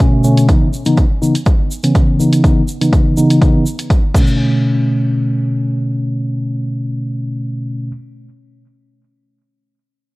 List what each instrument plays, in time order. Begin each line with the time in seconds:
Already playing: tine electric piano B2 D3 A3 C#4
0.00 kick, closed hi-hat, shaker
0.24 tine electric piano B2 D3 A3 C#4, shaker
0.38 closed hi-hat, shaker
0.49 tine electric piano C#3 E3, kick, closed hi-hat, shaker
0.73 shaker
0.85 tine electric piano C#3 E3 B3 D#4, closed hi-hat, shaker
0.98 kick, closed hi-hat, shaker
1.22 tine electric piano C#3 E3 B3 D#4, shaker
1.35 closed hi-hat, shaker
1.46 kick, closed hi-hat, shaker
1.71 shaker
1.83 tine electric piano C#3 E3 B3 C#4, closed hi-hat, shaker
1.95 kick, closed hi-hat, shaker
2.19 tine electric piano C#3 E3 B3 D#4, shaker
2.33 closed hi-hat, shaker
2.44 tine electric piano C#3 E3 B3 D#4, kick, closed hi-hat, shaker
2.68 shaker
2.81 tine electric piano C#3 E3 B3 D#4, closed hi-hat, shaker
2.93 kick, closed hi-hat, shaker
3.17 tine electric piano C#3 E3 B3 D#4, shaker
3.30 closed hi-hat, shaker
3.41 tine electric piano C#3 E3 B3, kick, closed hi-hat, shaker
3.66 shaker
3.79 closed hi-hat, shaker
3.90 kick, closed hi-hat, shaker
4.14 tine electric piano B2 D3 A3 C#4, kick, crash, shaker
4.27 shaker